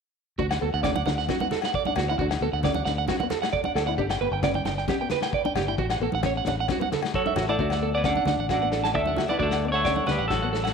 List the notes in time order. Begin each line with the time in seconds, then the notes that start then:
0.38 D2 D4 F#4, kick
0.51 F#5, snare, low agogo
0.61 D2 B3 A4
0.74 D2 F#5
0.83 C#4 D5, kick, snare, low conga, low agogo
0.96 F#5, high conga
1.06 D2 D4 F#5, snare, low conga
1.18 F#5, snare
1.28 C#4 F#4, kick, snare, high conga, low agogo
1.40 B3 F#5, high conga
1.51 A4, snare, low conga
1.62 A3 F#5, snare, low agogo
1.74 D5, kick
1.85 D4 F#5, high conga
1.96 D2 F#4, snare, low conga, low agogo
2.09 E4 F#5
2.19 D2 D4 F#4, kick
2.31 muted clean electric guitar stroke, snare, low agogo
2.41 D2 B3 A4
2.53 D2 F#5
2.63 C#4 D5, kick, snare, low conga, low agogo
2.74 F#5, high conga
2.85 D2 D4 F#5, snare
2.98 F#5
3.08 C#4 F#4, kick, snare, high conga, low agogo
3.20 B3 F#5, high conga
3.30 A4, snare, low conga
3.42 A3 F#5, snare, low agogo
3.53 D5, kick
3.64 D4 F#5, high conga
3.75 D2 A4, snare, low agogo
3.87 E4 F#5
3.98 G1 D4 G4, kick
4.10 G5, snare, low agogo
4.21 G1 B3 B4
4.31 G1 G5
4.43 C#4 D5, kick, snare, low conga, low agogo
4.54 G5, high conga
4.65 G1 D4 G5, snare, low conga
4.78 G5, snare
4.88 C#4 G4, kick, snare, high conga, low agogo
5.01 B3 G5
5.10 B4, snare, low conga
5.22 A3 G5, snare, low agogo
5.33 D5, kick
5.45 D4 G5, high conga
5.55 G1 G4, snare, low conga, low agogo
5.68 E4 G5
5.78 A1 F#4, muted nylon-string guitar stroke, kick
5.90 F#5, snare, low agogo
6.00 A1 B3 A4
6.12 A1 F#5, high conga
6.23 C#4 C#5, kick, snare, low conga, low agogo
6.37 F#5
6.45 A1 D4 F#5, snare, low conga
6.60 F#5
6.68 C#4 F#4, kick, snare, high conga, low agogo
6.80 B3 F#5, high conga
6.92 A4, snare, low conga
7.02 A3, snare, low agogo
7.14 F#3 F#4 A4 C#5, kick
7.25 D4 E5, high conga
7.36 A1 F#4, snare, low conga, low agogo
7.49 A3 E4 A4 D5 F#5
7.59 D2 D4 F#4, kick
7.70 F#5, snare, low agogo
7.82 B3 A4
7.95 B3 B4 D5 F#5
8.04 C#4 D4 D5 F#5, kick, snare, low agogo
8.08 D5
8.15 F#5, high conga
8.25 D2 D4 F#5, snare, low conga
8.37 A1 F#5
8.47 D4 F#4, kick, snare, low agogo
8.51 C#4 D5 F#5
8.62 B3 F#5
8.72 A4, snare
8.84 A3 A5, snare, low agogo
8.92 D2 A3 D5 E5, kick
8.99 A4
9.05 D4 F#5, high conga
9.16 F#4, snare, high conga, low conga, low agogo
9.28 B3 E4 D5 F#5, high conga
9.33 B4
9.37 D2 A3 D4 F#4 D5, kick
9.43 A4
9.51 F#5, snare, low agogo
9.65 B3 D5
9.72 A3 A4 C#5 F#5
9.85 C#4 D5, kick, snare, low agogo
9.96 F#5, high conga
10.07 D2 G3 D4 B4 F#5, snare, low conga
10.12 G4
10.19 A1 F#5
10.28 F#3 F#4 A4, kick, snare, low agogo
10.32 muted nylon-string guitar stroke
10.42 B3 F#5
10.53 A4, snare
10.64 A3 F#5, snare, low agogo